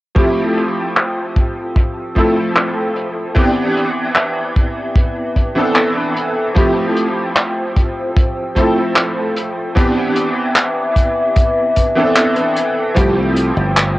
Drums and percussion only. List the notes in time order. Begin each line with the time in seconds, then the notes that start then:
0.16 kick, closed hi-hat
0.57 closed hi-hat
0.96 clap, closed hi-hat
1.36 kick, closed hi-hat
1.76 kick, closed hi-hat
2.16 kick, closed hi-hat
2.56 clap, closed hi-hat
2.96 closed hi-hat
3.36 kick, closed hi-hat
3.76 closed hi-hat
4.16 clap, closed hi-hat
4.56 kick, closed hi-hat
4.96 kick, closed hi-hat
5.36 kick, closed hi-hat
5.75 clap, closed hi-hat
6.17 closed hi-hat
6.56 kick, closed hi-hat
6.96 closed hi-hat
7.36 clap, closed hi-hat
7.76 kick, closed hi-hat
8.17 kick, closed hi-hat
8.56 kick, closed hi-hat
8.96 clap, closed hi-hat
9.36 closed hi-hat
9.77 kick, closed hi-hat
10.16 closed hi-hat
10.56 clap, closed hi-hat
10.96 kick, closed hi-hat
11.36 kick, closed hi-hat
11.76 kick, closed hi-hat
12.16 clap, closed hi-hat
12.36 closed hi-hat
12.56 closed hi-hat
12.96 kick, closed hi-hat
13.36 closed hi-hat
13.77 clap, closed hi-hat